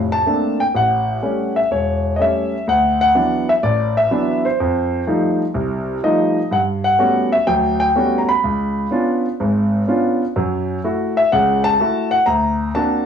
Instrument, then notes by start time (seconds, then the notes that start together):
grand piano
Already playing: F1 A2
0.12 A5
0.26 A3 A#3 C4 D4
0.60 G5
0.75 A1 F#5
1.23 G3 A3 C#4
1.56 E5
1.71 E1 C#5
2.16 G3 A3 D#5
2.20 C#4 E5
2.67 D2 F#5
3.01 F#5
3.15 E3 F#3 B3 D4
3.49 E5
3.63 A1 D5
3.97 E5
4.11 E3 F#3 B3 D4
4.45 C5
4.60 F2
5.07 F3 G3 A3 D#4
5.54 C2
6.03 F3 G3 A3 D#4 D#5
6.51 G2 F#5
6.84 F#5
6.99 G3 A3 B3 C#4 F#4
7.32 E5
7.47 D2 F#3 G5
7.80 G5
7.96 G3 A3 B3 C#4 F#4
8.18 A#5
8.29 B5
8.44 C#2
8.91 B3 C#4 D4 F4
9.40 G#1 G#2
9.87 B3 C#4 D4 F4
10.36 F#2 F#3
10.84 A3 E4 F#4
11.17 E5
11.32 C#2 C#3 F#5
11.64 A5
11.80 A3 E4 F#4
12.11 F#5
12.26 D2 A#5
12.75 A#3 C4 D4 F#4 A5